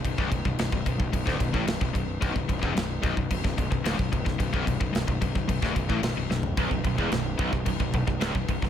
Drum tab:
CC |x-x-x-x-x-x-x-x-|x-x-x-x-x-x-x-x-|x-x-x-x-x-x-x---|x-x-x-x-x-x-x-x-|
SD |----o----o--o---|----o----o--o--o|----o----o--o-o-|----o-------o--o|
FT |----------------|----------------|---------------o|----------------|
BD |oooo-ooooooo-oo-|oooo--oooooo-ooo|oooo-ooooooo----|oooo--oooooo-ooo|